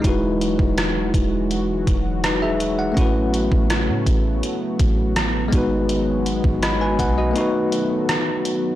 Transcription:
Already playing: analog synth pad G#3 B3
0.00 tine electric piano G#3 D#4
0.04 808-style bass E1, analog synth pad E3 F#3 F#4, tine electric piano E4 F#4, kick, closed hi-hat
0.09 tine electric piano B4
0.41 closed hi-hat
0.59 808-style bass E1, kick
0.78 cross-stick, closed hi-hat
1.14 808-style bass E1, kick, closed hi-hat
1.51 closed hi-hat
1.87 808-style bass E1, kick, closed hi-hat
2.24 tine electric piano D#4 B4, cross-stick, closed hi-hat
2.42 tine electric piano G#4 E5
2.60 closed hi-hat
2.79 tine electric piano F#5
2.92 tine electric piano A3 C#4
2.97 808-style bass A1, analog synth pad C#3 A3 B3, tine electric piano E4 F#4, kick, closed hi-hat
3.01 tine electric piano B4
3.34 closed hi-hat
3.52 808-style bass A1, kick
3.70 cross-stick, closed hi-hat
3.89 808-style bass A2
4.07 808-style bass A1, kick, closed hi-hat
4.43 closed hi-hat
4.79 808-style bass A1, kick, closed hi-hat
5.16 cross-stick, closed hi-hat
5.48 tine electric piano G#3 B3
5.53 808-style bass G#1, analog synth pad D#3 F#3 G#3 F#4, tine electric piano D#4 F#4, kick, closed hi-hat
5.58 tine electric piano B4
5.89 closed hi-hat
6.26 closed hi-hat
6.44 808-style bass G#1, kick
6.63 tine electric piano D#5 B5, cross-stick, closed hi-hat
6.81 tine electric piano B4 G#5
6.99 808-style bass B1, tine electric piano F#5, kick, closed hi-hat
7.18 tine electric piano F#4 D#5
7.31 tine electric piano A3 B3
7.35 analog synth pad A3, tine electric piano D#4 F#4, closed hi-hat
7.41 tine electric piano B4
7.72 closed hi-hat
8.09 cross-stick, closed hi-hat
8.45 closed hi-hat

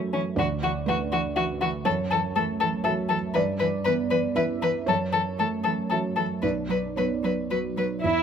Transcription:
Already playing: felt piano F#2 A3 F#4 A4 E5
0.13 cello E3, violin C#4
0.36 felt piano D2 D5, cello E3, violin F#4
0.63 cello E3, violin F#4
0.86 cello E3, felt piano A3 B4, violin F#4
1.12 cello E3, violin F#4
1.36 cello E3, violin F#4, felt piano F#4 E5
1.61 cello E3, violin F#4
1.85 felt piano F#2 C#5, cello E3, violin A4
2.11 cello E3, violin A4
2.36 cello E3, felt piano A3, violin A4
2.60 cello E3, violin A4
2.84 cello E3, felt piano F#4 E5, violin A4
3.09 cello E3, violin A4
3.34 felt piano G2 D5, cello E3, violin B4
3.59 cello E3, violin B4
3.85 cello E3, felt piano B3, violin B4
4.11 cello E3, violin B4
4.35 cello E3, felt piano E4 E5, violin B4
4.62 cello E3, violin B4
4.86 felt piano F#2 C#5, cello E3, violin A4
5.12 cello E3, violin A4
5.38 cello E3, felt piano A3, violin A4
5.64 cello E3, violin A4
5.90 cello E3, felt piano F#4 E5, violin A4
6.16 cello E3, violin A4
6.42 felt piano B1 D5, cello F#3, violin B4
6.68 cello F#3, violin B4
6.96 cello F#3, felt piano B3 C#5, violin B4
7.23 cello F#3, violin B4
7.51 cello F#3, felt piano F#4 B4, violin B4
7.77 cello F#3, violin B4
8.03 felt piano E2, cello E4, violin E4

